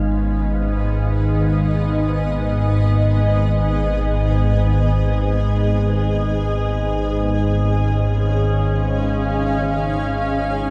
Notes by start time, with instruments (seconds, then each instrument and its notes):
Already playing: synth drone G#1 G#2, ambient pad B3 C#4 G#4 D#5 F5
6.76 ambient pad C#4
7.75 ambient pad F5